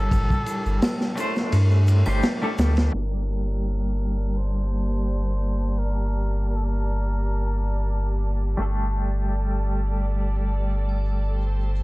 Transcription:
Already playing: clean electric guitar G3 D4 G4, muted trumpet A4
0.11 sub bass G1, kick, ride, shaker
0.30 kick, shaker
0.46 ride, shaker
0.66 sub bass G1, shaker
0.82 snare, ride, triangle, shaker
1.01 snare, shaker
1.16 clean electric guitar G3 A3 D4, ride, shaker
1.20 clean electric guitar C5
1.36 snare, shaker
1.52 sub bass G2, ride, shaker
1.71 shaker
1.87 ride, shaker
2.06 sub bass G1, clean electric guitar G3 A3 D4 C5, triangle, shaker
2.22 snare, ride, shaker
2.42 clean electric guitar G3 A3 D4 A4, shaker
2.58 sub bass D2, snare, ride, shaker
2.76 snare, ride, shaker
2.92 sub bass G1, clean electric guitar G3 A#3 D4, string section A#3 G4 D5 A5, muted trumpet A#4
2.97 clean electric guitar A#4
4.37 muted trumpet C5
5.24 triangle, shaker
5.79 muted trumpet A#4
6.11 shaker
6.49 muted trumpet A#4
6.56 muted trumpet A4
6.64 muted trumpet A#4
6.80 shaker
7.16 shaker
7.52 shaker
7.71 triangle, shaker
7.87 shaker
8.05 shaker
8.22 shaker
8.41 shaker
8.57 sub bass G1, clean electric guitar G3 A3 D4, string section A4 D5, shaker
8.62 clean electric guitar A4
8.93 shaker
9.12 shaker
9.29 shaker
9.47 shaker
9.63 shaker
9.83 shaker
10.00 shaker
10.18 shaker
10.34 shaker
10.54 shaker
10.70 shaker
10.89 triangle, shaker
11.05 shaker
11.24 shaker
11.41 string section C5, shaker
11.60 shaker
11.75 shaker

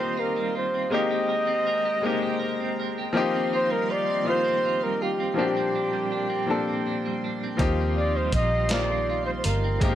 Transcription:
Already playing: clean electric guitar D#3 G3 F4, grand piano A#3 C4 D#4 F4 G4, analog synth pad G4 D#5 F5 C6, flugelhorn C5
0.00 clean electric guitar C4
0.17 clean electric guitar F4, flugelhorn A#4
0.37 clean electric guitar G3
0.55 clean electric guitar F4, flugelhorn C5
0.74 clean electric guitar C4
0.90 grand piano G#3 A#3 C4 D#4, clean electric guitar G#3 A#4, flugelhorn D#5, analog synth pad G5 A#5
0.94 analog synth pad G#3 C5, grand piano G4
1.10 clean electric guitar G4
1.29 clean electric guitar A#4
1.47 clean electric guitar C4
1.67 clean electric guitar A#4
1.85 clean electric guitar G4
2.02 grand piano G#3 A#3 C4 D#4, clean electric guitar G#3 A#4
2.06 grand piano G4
2.22 clean electric guitar G4
2.39 clean electric guitar A#4
2.60 clean electric guitar C4
2.80 clean electric guitar A#4
2.98 clean electric guitar G4
3.12 grand piano F3 A#3 C4, analog synth pad D#4 G4 F5 C6
3.16 clean electric guitar D#3 F4, grand piano D#4 G4
3.35 clean electric guitar C4
3.53 clean electric guitar F4, flugelhorn C5
3.71 clean electric guitar G3, flugelhorn A#4
3.90 clean electric guitar F4, flugelhorn D5
4.09 clean electric guitar C4
4.23 clean electric guitar D#3 F4, grand piano F3 A#3 C4 D#4
4.28 grand piano F4, flugelhorn C5
4.44 clean electric guitar C4
4.65 clean electric guitar F4
4.83 clean electric guitar G3, flugelhorn A#4
5.02 clean electric guitar F4, flugelhorn G4
5.20 clean electric guitar C4
5.34 clean electric guitar A#2, grand piano F3 A#3 C4 D4, analog synth pad A#3 D5 G5 C6
5.39 clean electric guitar D4, grand piano G4, flugelhorn G4
5.57 clean electric guitar C4
5.75 clean electric guitar D4
5.93 clean electric guitar G3
6.12 clean electric guitar D4
6.30 clean electric guitar C4
6.46 clean electric guitar A#2 D4, grand piano F3 A#3 C4 D4
6.50 grand piano A4
6.68 clean electric guitar C4
6.86 clean electric guitar D4
7.06 clean electric guitar G3
7.24 clean electric guitar D4
7.44 clean electric guitar C4
7.57 fingered electric bass D#2, grand piano F3 A#3 C4 D#4 G4, analog synth pad D#4 G4 F5, kick, closed hi-hat
7.62 clean electric guitar D#3 F4
7.81 clean electric guitar C4
7.97 clean electric guitar F4, flugelhorn D5
8.16 clean electric guitar G3, flugelhorn C5
8.32 fingered electric bass A#1, clean electric guitar F4, flugelhorn D#5, kick, closed hi-hat
8.55 clean electric guitar C4
8.69 clean electric guitar D#3 F4, grand piano F3 A#3 C4 D#4, flugelhorn D5, snare, closed hi-hat
8.74 grand piano F4
8.92 clean electric guitar C4
9.10 clean electric guitar F4
9.26 clean electric guitar G3, flugelhorn C5
9.38 flugelhorn C5
9.44 fingered electric bass G1, clean electric guitar F4, flugelhorn A#4, closed hi-hat
9.64 clean electric guitar C4
9.80 fingered electric bass G#1, grand piano G#3 A#3 C4 D#4, clean electric guitar G#3 A#4, analog synth pad G#3 G5 A#5, flugelhorn A#4, kick, closed hi-hat
9.85 grand piano G4

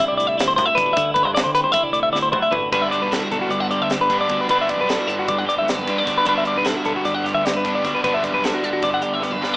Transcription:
Already playing: clean electric guitar D3 G3 C4
0.00 clean electric guitar E4, closed hi-hat
0.08 fingered electric bass C2, clean electric guitar D5
0.17 clean electric guitar A2 D5, closed hi-hat
0.27 clean electric guitar E5
0.37 fingered electric bass D2, clean electric guitar E4 D5, snare, closed hi-hat
0.48 clean electric guitar C5
0.56 fingered electric bass F#2, clean electric guitar E4 C5, kick, closed hi-hat
0.66 clean electric guitar E5
0.75 fingered electric bass A1, clean electric guitar D3 E4 B4, kick, closed hi-hat
0.86 clean electric guitar F#4
0.93 fingered electric bass D2, clean electric guitar D3 E4 E5, kick
0.98 closed hi-hat
1.14 clean electric guitar B4, kick, closed hi-hat
1.23 fingered electric bass G2, clean electric guitar C5
1.35 clean electric guitar C4 D5, snare, closed hi-hat
1.44 fingered electric bass D3, clean electric guitar C5
1.55 clean electric guitar G3 B4, closed hi-hat
1.64 fingered electric bass A1, clean electric guitar C5
1.72 clean electric guitar E4 E5, kick, closed hi-hat
1.83 fingered electric bass C2, clean electric guitar D5
1.92 clean electric guitar A2 D5, closed hi-hat
2.03 clean electric guitar E5
2.12 fingered electric bass D2, clean electric guitar E4 D5, snare
2.22 clean electric guitar C5
2.32 fingered electric bass F#2, clean electric guitar E4 C5, kick
2.42 clean electric guitar E5
2.51 fingered electric bass A1, clean electric guitar D3 F#4 B4, floor tom
2.72 fingered electric bass G1, clean electric guitar G2 B3 D4 F#4 B4, overdriven electric guitar G2 D3 G3 B3 D4, kick, closed hi-hat
2.82 clean electric guitar E5
2.91 clean electric guitar D4 D5, closed hi-hat
3.01 fingered electric bass B1, clean electric guitar B4
3.11 clean electric guitar E4 A4, snare, closed hi-hat
3.23 clean electric guitar F#4
3.31 fingered electric bass B1, clean electric guitar D3 B3 A4, closed hi-hat
3.42 clean electric guitar F#4
3.49 fingered electric bass G2, clean electric guitar B3 D5, closed hi-hat
3.60 clean electric guitar D4 F#5
3.70 clean electric guitar G2 G4 D5, closed hi-hat
3.81 fingered electric bass D2, clean electric guitar E5
3.90 clean electric guitar D4 D5, snare, closed hi-hat
4.00 fingered electric bass G2, clean electric guitar B4
4.10 overdriven electric guitar G2 D3 G3 B3 D4, clean electric guitar B3, kick, closed hi-hat
4.21 clean electric guitar D5
4.29 fingered electric bass D2, clean electric guitar G2 B3 D4 F#4, kick, closed hi-hat
4.41 clean electric guitar B4
4.49 fingered electric bass G1, clean electric guitar G2 B3 D4 F#4 B4, overdriven electric guitar G2 D3 G3 B3 D4, kick, closed hi-hat
4.61 clean electric guitar E5
4.69 clean electric guitar D4 D5, kick, closed hi-hat
4.77 fingered electric bass B1, clean electric guitar B4
4.88 clean electric guitar E4 A4, snare, closed hi-hat
4.99 clean electric guitar F#4
5.06 fingered electric bass G1, clean electric guitar D3 B3 A4, closed hi-hat
5.19 clean electric guitar F#4
5.26 fingered electric bass G2, clean electric guitar D4 D5, kick, closed hi-hat
5.38 clean electric guitar F#5
5.46 clean electric guitar G2 G4 D5
5.50 closed hi-hat
5.57 fingered electric bass F#1, clean electric guitar E5
5.65 clean electric guitar B3, closed hi-hat
5.69 clean electric guitar D5, snare
5.75 fingered electric bass G2, clean electric guitar D4 B4
5.84 overdriven electric guitar G2, clean electric guitar B3, kick, closed hi-hat
5.89 overdriven electric guitar D3 G3 B3 D4
5.98 clean electric guitar D5
6.04 fingered electric bass D2, clean electric guitar G2 B3 D4 F#4, kick, closed hi-hat
6.09 snare
6.18 clean electric guitar B4
6.25 fingered electric bass G1, clean electric guitar G2 B3 D4 F#4, overdriven electric guitar G2 D3 G3 B3, kick, closed hi-hat
6.29 overdriven electric guitar D4, clean electric guitar B4
6.38 clean electric guitar E5
6.45 clean electric guitar D4 D5, closed hi-hat
6.56 fingered electric bass B1, clean electric guitar B4
6.64 clean electric guitar E4 A4, snare, closed hi-hat
6.76 clean electric guitar F#4
6.84 fingered electric bass B1, clean electric guitar D3 B3 A4, closed hi-hat
6.96 clean electric guitar F#4
7.04 fingered electric bass G2, clean electric guitar D4 D5, snare, closed hi-hat
7.14 clean electric guitar F#5
7.23 clean electric guitar G2 G4 D5, snare, closed hi-hat
7.34 fingered electric bass D2, clean electric guitar E5
7.43 clean electric guitar B3 D5, snare, closed hi-hat
7.53 fingered electric bass G2, clean electric guitar D4 B4
7.63 overdriven electric guitar G2 D3 G3 B3 D4, clean electric guitar B3, kick, closed hi-hat
7.75 clean electric guitar D5
7.83 fingered electric bass D2, clean electric guitar G2 B3 D4 F#4, kick, snare, closed hi-hat
7.95 clean electric guitar B4
8.03 fingered electric bass G1, clean electric guitar G2 B3 D4 F#4 B4, overdriven electric guitar G2 D3 G3 B3 D4, kick, closed hi-hat
8.14 clean electric guitar E5
8.23 clean electric guitar D4 D5, kick, closed hi-hat
8.33 fingered electric bass B1, clean electric guitar B4
8.43 clean electric guitar E4 A4, snare, closed hi-hat
8.54 clean electric guitar F#4
8.62 fingered electric bass G1, clean electric guitar D3 B3 A4, closed hi-hat
8.73 clean electric guitar F#4
8.82 fingered electric bass G2, clean electric guitar D4 D5, kick, snare, closed hi-hat
8.94 clean electric guitar F#5
9.01 clean electric guitar G2 G4 D5, closed hi-hat
9.13 fingered electric bass F#1, clean electric guitar E5
9.21 clean electric guitar B3 D5, snare
9.31 fingered electric bass G2, clean electric guitar D4 B4
9.41 overdriven electric guitar G2 D3 G3 B3 D4, clean electric guitar B3, snare
9.54 clean electric guitar D5

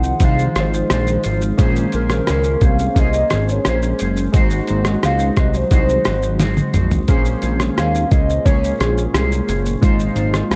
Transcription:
Already playing: analog synth bass C2, ambient pad D#3 F3 G#3 G#4, synth keys G#3 D#4 F4 C5, clean electric guitar D#4 C5, soft synth lead F#5
0.03 shaker
0.20 analog synth bass C2, synth keys G#3 D#4 F4 C5, clean electric guitar G#3 D#4, kick, closed hi-hat, shaker
0.24 clean electric guitar F4 C5, soft synth lead F5
0.39 shaker
0.56 analog synth bass G#1, clean electric guitar D#4 F4 C5, cross-stick, closed hi-hat, shaker
0.60 soft synth lead C5
0.74 shaker
0.90 analog synth bass A#1, clean electric guitar G#3 D#4 F4 C5, soft synth lead C5, cross-stick, closed hi-hat, shaker
1.07 shaker
1.24 analog synth bass G#1, clean electric guitar F4 C5, closed hi-hat, shaker
1.28 clean electric guitar D#4
1.41 shaker
1.57 analog synth bass A#1, synth keys A#3 C#4 G#4 C5, ambient pad A#3 C#4, clean electric guitar A#3 C#4 G#4 C5, kick, closed hi-hat, shaker
1.76 shaker
1.92 analog synth bass A#1, clean electric guitar C#4 G#4 C5, soft synth lead A#4, closed hi-hat, shaker
2.10 cross-stick, shaker
2.27 analog synth bass C#2, clean electric guitar A#3 C#4 G#4 C5, cross-stick, closed hi-hat, shaker
2.44 shaker
2.61 analog synth bass C2, clean electric guitar G#4 C5, soft synth lead F5, kick, closed hi-hat, shaker
2.66 clean electric guitar C#4
2.79 shaker
2.95 analog synth bass C2, synth keys A#3 C#4 G#4 C5, clean electric guitar A#3 C#4 G#4, kick, closed hi-hat, shaker
2.99 clean electric guitar C5, soft synth lead D#5
3.13 shaker
3.30 analog synth bass G#1, clean electric guitar G#4 C5, cross-stick, closed hi-hat, shaker
3.35 clean electric guitar C#4
3.49 soft synth lead C#5, shaker
3.65 analog synth bass A#1, clean electric guitar A#3 C#4 G#4, soft synth lead C5, cross-stick, closed hi-hat, shaker
3.69 clean electric guitar C5
3.82 shaker
3.99 analog synth bass F#1, clean electric guitar G#4 C5, closed hi-hat, shaker
4.04 clean electric guitar C#4
4.17 shaker
4.32 analog synth bass G#1, ambient pad D#3 F#3 G#3 C4 F#4, synth keys G#3 D#4 F#4 C5, clean electric guitar G#3 D#4 F#4, kick, closed hi-hat, shaker
4.37 clean electric guitar C5
4.50 shaker
4.67 analog synth bass G#1, clean electric guitar D#4 F#4 C5, closed hi-hat, shaker
4.85 cross-stick, shaker
5.03 analog synth bass C#2, clean electric guitar G#3 D#4 F#4 C5, soft synth lead F5, cross-stick, closed hi-hat, shaker
5.19 shaker
5.37 analog synth bass C2, clean electric guitar D#4 F#4 C5, soft synth lead D#5, kick, cross-stick, closed hi-hat, shaker
5.54 soft synth lead C5, shaker
5.71 analog synth bass C2, synth keys G#3 D#4 F#4 C5, clean electric guitar G#3 D#4 F#4 C5, soft synth lead C5, kick, closed hi-hat, shaker
5.89 shaker
6.05 analog synth bass G#1, clean electric guitar D#4 F#4 C5, cross-stick, closed hi-hat, shaker
6.22 shaker
6.39 clean electric guitar G#3 D#4 F#4 C5, snare, closed hi-hat, shaker
6.57 high tom, shaker
6.73 analog synth bass A#1, clean electric guitar D#4 F#4 C5, closed hi-hat, mid tom, shaker
6.91 floor tom, shaker
7.07 analog synth bass A#1, ambient pad A#2 A#3 C#4 F4, clean electric guitar A#3 C#4 G#4 C5, synth keys A#3 C#4 G#4 C5, kick, closed hi-hat, shaker
7.25 shaker
7.42 analog synth bass A#1, clean electric guitar C#4 G#4 C5, closed hi-hat, shaker
7.60 cross-stick, shaker
7.76 analog synth bass D#2, clean electric guitar A#3 C#4 G#4 C5, soft synth lead F5, cross-stick, closed hi-hat, shaker
7.95 shaker
8.11 analog synth bass C#2, clean electric guitar C#4 G#4 C5, soft synth lead D#5, kick, closed hi-hat, shaker
8.30 shaker
8.45 analog synth bass C#2, synth keys A#3 C#4 G#4 C#5, clean electric guitar A#3 C#4 G#4, soft synth lead C#5, kick, closed hi-hat, shaker
8.64 shaker
8.79 analog synth bass A#1, clean electric guitar C#4 G#4 C5, soft synth lead G#4, cross-stick, closed hi-hat, shaker
8.98 shaker
9.13 analog synth bass C2, clean electric guitar A#3 C#4 G#4 C5, soft synth lead G#4, cross-stick, closed hi-hat, shaker
9.32 shaker
9.47 analog synth bass F#1, clean electric guitar C#4 G#4 C5, closed hi-hat, shaker
9.66 shaker
9.81 analog synth bass G#1, ambient pad F3 D#4 G#4, synth keys G#3 D#4 F4 C5, clean electric guitar G#3 D#4 F4 C5, kick, closed hi-hat, shaker
9.99 shaker
10.16 analog synth bass G#1, clean electric guitar D#4 F4 C5, closed hi-hat, shaker
10.34 cross-stick, shaker
10.51 analog synth bass C#2, clean electric guitar G#3 D#4, cross-stick, closed hi-hat, shaker

